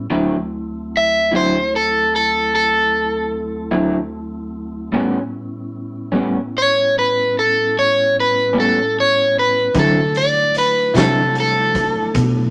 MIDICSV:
0, 0, Header, 1, 6, 480
1, 0, Start_track
1, 0, Tempo, 802139
1, 69, Time_signature, 12, 3, 24, 8
1, 7482, End_track
2, 0, Start_track
2, 0, Title_t, "Overdriven electric guitar"
2, 0, Program_c, 0, 29
2, 581, Note_on_c, 0, 76, 77
2, 798, Note_off_c, 0, 76, 0
2, 814, Note_on_c, 0, 72, 74
2, 1035, Note_off_c, 0, 72, 0
2, 1054, Note_on_c, 0, 69, 73
2, 1274, Note_off_c, 0, 69, 0
2, 1292, Note_on_c, 0, 69, 66
2, 1514, Note_off_c, 0, 69, 0
2, 1529, Note_on_c, 0, 69, 83
2, 2935, Note_off_c, 0, 69, 0
2, 3937, Note_on_c, 0, 73, 78
2, 4157, Note_off_c, 0, 73, 0
2, 4182, Note_on_c, 0, 71, 67
2, 4399, Note_off_c, 0, 71, 0
2, 4422, Note_on_c, 0, 69, 65
2, 4639, Note_off_c, 0, 69, 0
2, 4661, Note_on_c, 0, 73, 83
2, 4878, Note_off_c, 0, 73, 0
2, 4908, Note_on_c, 0, 71, 67
2, 5123, Note_off_c, 0, 71, 0
2, 5146, Note_on_c, 0, 69, 70
2, 5361, Note_off_c, 0, 69, 0
2, 5387, Note_on_c, 0, 73, 71
2, 5602, Note_off_c, 0, 73, 0
2, 5621, Note_on_c, 0, 71, 68
2, 5839, Note_off_c, 0, 71, 0
2, 5859, Note_on_c, 0, 69, 63
2, 6078, Note_off_c, 0, 69, 0
2, 6088, Note_on_c, 0, 74, 81
2, 6312, Note_off_c, 0, 74, 0
2, 6333, Note_on_c, 0, 71, 73
2, 6555, Note_off_c, 0, 71, 0
2, 6567, Note_on_c, 0, 69, 70
2, 6792, Note_off_c, 0, 69, 0
2, 6823, Note_on_c, 0, 69, 73
2, 7482, Note_off_c, 0, 69, 0
2, 7482, End_track
3, 0, Start_track
3, 0, Title_t, "Tonewheel organ"
3, 0, Program_c, 1, 16
3, 76, Note_on_c, 1, 54, 63
3, 79, Note_on_c, 1, 38, 66
3, 79, Note_on_c, 1, 57, 60
3, 79, Note_on_c, 1, 64, 65
3, 83, Note_on_c, 1, 60, 66
3, 2929, Note_off_c, 1, 54, 0
3, 2930, Note_off_c, 1, 38, 0
3, 2930, Note_off_c, 1, 57, 0
3, 2930, Note_off_c, 1, 64, 0
3, 2932, Note_off_c, 1, 60, 0
3, 2938, Note_on_c, 1, 45, 65
3, 2939, Note_on_c, 1, 55, 62
3, 2939, Note_on_c, 1, 61, 63
3, 2942, Note_on_c, 1, 59, 66
3, 2942, Note_on_c, 1, 64, 63
3, 5801, Note_off_c, 1, 45, 0
3, 5801, Note_off_c, 1, 55, 0
3, 5801, Note_off_c, 1, 61, 0
3, 5803, Note_off_c, 1, 59, 0
3, 5803, Note_off_c, 1, 64, 0
3, 5821, Note_on_c, 1, 62, 62
3, 5822, Note_on_c, 1, 54, 62
3, 5824, Note_on_c, 1, 64, 61
3, 5827, Note_on_c, 1, 57, 62
3, 7482, Note_off_c, 1, 54, 0
3, 7482, Note_off_c, 1, 57, 0
3, 7482, Note_off_c, 1, 62, 0
3, 7482, Note_off_c, 1, 64, 0
3, 7482, End_track
4, 0, Start_track
4, 0, Title_t, "Clean electric guitar"
4, 0, Program_c, 2, 27
4, 61, Note_on_c, 2, 50, 75
4, 63, Note_on_c, 2, 54, 69
4, 66, Note_on_c, 2, 60, 80
4, 69, Note_on_c, 2, 64, 78
4, 209, Note_off_c, 2, 50, 0
4, 210, Note_off_c, 2, 54, 0
4, 211, Note_off_c, 2, 60, 0
4, 213, Note_off_c, 2, 64, 0
4, 787, Note_on_c, 2, 64, 60
4, 792, Note_on_c, 2, 60, 52
4, 794, Note_on_c, 2, 50, 45
4, 795, Note_on_c, 2, 54, 52
4, 932, Note_off_c, 2, 64, 0
4, 935, Note_off_c, 2, 60, 0
4, 936, Note_off_c, 2, 50, 0
4, 936, Note_off_c, 2, 54, 0
4, 2222, Note_on_c, 2, 64, 62
4, 2224, Note_on_c, 2, 60, 59
4, 2227, Note_on_c, 2, 54, 54
4, 2233, Note_on_c, 2, 50, 51
4, 2369, Note_off_c, 2, 64, 0
4, 2370, Note_off_c, 2, 60, 0
4, 2372, Note_off_c, 2, 54, 0
4, 2375, Note_off_c, 2, 50, 0
4, 2946, Note_on_c, 2, 45, 77
4, 2951, Note_on_c, 2, 55, 75
4, 2955, Note_on_c, 2, 59, 75
4, 2957, Note_on_c, 2, 61, 82
4, 3092, Note_off_c, 2, 45, 0
4, 3094, Note_off_c, 2, 55, 0
4, 3096, Note_off_c, 2, 59, 0
4, 3097, Note_off_c, 2, 61, 0
4, 3662, Note_on_c, 2, 61, 69
4, 3668, Note_on_c, 2, 55, 66
4, 3668, Note_on_c, 2, 59, 60
4, 3671, Note_on_c, 2, 45, 53
4, 3810, Note_off_c, 2, 61, 0
4, 3813, Note_off_c, 2, 55, 0
4, 3813, Note_off_c, 2, 59, 0
4, 3815, Note_off_c, 2, 45, 0
4, 5105, Note_on_c, 2, 61, 57
4, 5107, Note_on_c, 2, 59, 54
4, 5108, Note_on_c, 2, 55, 47
4, 5112, Note_on_c, 2, 45, 51
4, 5251, Note_off_c, 2, 61, 0
4, 5253, Note_off_c, 2, 55, 0
4, 5253, Note_off_c, 2, 59, 0
4, 5255, Note_off_c, 2, 45, 0
4, 5833, Note_on_c, 2, 50, 59
4, 5834, Note_on_c, 2, 54, 66
4, 5837, Note_on_c, 2, 60, 66
4, 5839, Note_on_c, 2, 64, 68
4, 5976, Note_off_c, 2, 50, 0
4, 5976, Note_off_c, 2, 54, 0
4, 5978, Note_off_c, 2, 60, 0
4, 5979, Note_off_c, 2, 64, 0
4, 6546, Note_on_c, 2, 64, 63
4, 6551, Note_on_c, 2, 60, 57
4, 6553, Note_on_c, 2, 54, 55
4, 6555, Note_on_c, 2, 50, 50
4, 6692, Note_off_c, 2, 64, 0
4, 6695, Note_off_c, 2, 60, 0
4, 6696, Note_off_c, 2, 54, 0
4, 6697, Note_off_c, 2, 50, 0
4, 7482, End_track
5, 0, Start_track
5, 0, Title_t, "Fingered electric bass"
5, 0, Program_c, 3, 33
5, 5830, Note_on_c, 3, 50, 74
5, 6529, Note_off_c, 3, 50, 0
5, 6549, Note_on_c, 3, 48, 84
5, 7248, Note_off_c, 3, 48, 0
5, 7270, Note_on_c, 3, 47, 80
5, 7482, Note_off_c, 3, 47, 0
5, 7482, End_track
6, 0, Start_track
6, 0, Title_t, "Drums"
6, 5831, Note_on_c, 9, 42, 73
6, 5832, Note_on_c, 9, 36, 89
6, 5891, Note_off_c, 9, 42, 0
6, 5892, Note_off_c, 9, 36, 0
6, 6072, Note_on_c, 9, 42, 56
6, 6132, Note_off_c, 9, 42, 0
6, 6310, Note_on_c, 9, 42, 55
6, 6370, Note_off_c, 9, 42, 0
6, 6550, Note_on_c, 9, 42, 69
6, 6562, Note_on_c, 9, 38, 92
6, 6610, Note_off_c, 9, 42, 0
6, 6622, Note_off_c, 9, 38, 0
6, 6793, Note_on_c, 9, 42, 52
6, 6853, Note_off_c, 9, 42, 0
6, 7031, Note_on_c, 9, 36, 69
6, 7033, Note_on_c, 9, 42, 58
6, 7091, Note_off_c, 9, 36, 0
6, 7092, Note_off_c, 9, 42, 0
6, 7268, Note_on_c, 9, 42, 73
6, 7270, Note_on_c, 9, 36, 94
6, 7328, Note_off_c, 9, 42, 0
6, 7330, Note_off_c, 9, 36, 0
6, 7482, End_track
0, 0, End_of_file